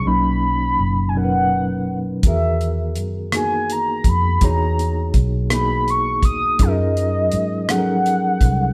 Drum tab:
HH |------|xxxxxx|xxxxxx|xxxxxx|
SD |------|---r--|---r--|---r--|
BD |------|o----o|o-o--o|o----o|